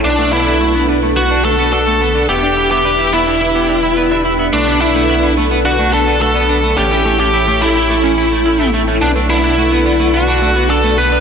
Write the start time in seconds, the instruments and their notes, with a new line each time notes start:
Already playing: string machine A4
0.04 detuned saw bass B1, clean electric guitar B3 D4, lead electric guitar D4, string machine D4 B4 F#5
0.19 clean electric guitar A3 D4
0.33 clean electric guitar B3 D4, lead electric guitar E4
0.47 clean electric guitar B3 D4
0.61 clean electric guitar A3 F#4
0.75 clean electric guitar B3
0.89 clean electric guitar B3 D4
1.03 clean electric guitar A3 B3
1.17 clean electric guitar B3, lead electric guitar F#4
1.31 clean electric guitar D4
1.45 clean electric guitar A3 D4, lead electric guitar A4
1.59 clean electric guitar B3
1.73 clean electric guitar D4 F#4, lead electric guitar A4
1.87 clean electric guitar A3 B3
2.01 clean electric guitar B3
2.15 clean electric guitar B3 D4
2.29 detuned saw bass E1, clean electric guitar B3 E4, string machine G4 B4 E5, lead electric guitar G4
2.43 clean electric guitar D4 G4
2.57 clean electric guitar E4 G4
2.71 clean electric guitar B3 E4, lead electric guitar G4
2.85 clean electric guitar D4 B4
2.99 clean electric guitar E4
3.13 clean electric guitar B3 E4, lead electric guitar E4
3.27 clean electric guitar D4 E4
3.41 clean electric guitar E4
3.55 clean electric guitar B3 G4
3.69 clean electric guitar D4 G4
3.83 clean electric guitar E4
3.97 clean electric guitar B3 B4
4.11 clean electric guitar D4 E4
4.25 clean electric guitar E4
4.39 clean electric guitar B3 E4
4.53 detuned saw bass B1, clean electric guitar A3 B3, string machine D4 A4 F#5, lead electric guitar D4
4.67 clean electric guitar B3 D4
4.81 clean electric guitar D4, lead electric guitar E4
4.95 clean electric guitar A3 B3
5.09 clean electric guitar B3 F#4
5.23 clean electric guitar B3 D4
5.37 clean electric guitar A3 B3
5.51 clean electric guitar B3
5.65 clean electric guitar B3 D4, lead electric guitar F#4
5.79 clean electric guitar A3 D4
5.93 clean electric guitar B3 D4, lead electric guitar A4
6.07 clean electric guitar B3 D4
6.21 clean electric guitar A3 F#4, lead electric guitar A4
6.35 clean electric guitar B3
6.49 clean electric guitar B3 D4
6.63 clean electric guitar A3 B3
6.77 detuned saw bass A1, clean electric guitar A3 C#4, string machine E4 C#5 G5, lead electric guitar G4
6.91 clean electric guitar C#4 E4
7.05 clean electric guitar A3 C#4
7.19 clean electric guitar A3 C#4, lead electric guitar G4
7.34 clean electric guitar E4
7.47 clean electric guitar A3
7.62 clean electric guitar A3 C#4, lead electric guitar E4
7.76 clean electric guitar A3 E4
7.90 clean electric guitar A3
8.04 clean electric guitar C#4
8.18 clean electric guitar C#4 E4
8.32 clean electric guitar A3
8.46 clean electric guitar C#4 E4
8.60 clean electric guitar A3 E4
8.74 clean electric guitar A3
8.88 clean electric guitar A3 C#4
9.02 detuned saw bass B1, clean electric guitar B3 D4, lead electric guitar D4, string machine D4 B4 F#5
9.16 clean electric guitar A3 D4
9.30 clean electric guitar B3 D4, lead electric guitar E4
9.44 clean electric guitar B3 D4
9.58 clean electric guitar A3 F#4
9.72 clean electric guitar B3
9.86 clean electric guitar B3 D4
10.00 clean electric guitar A3 B3
10.14 clean electric guitar B3, lead electric guitar F#4
10.28 clean electric guitar D4
10.42 clean electric guitar A3 D4
10.56 clean electric guitar B3
10.70 clean electric guitar D4 F#4, lead electric guitar A4
10.84 clean electric guitar A3 B3
10.98 clean electric guitar B3, lead electric guitar B4
11.12 clean electric guitar B3 D4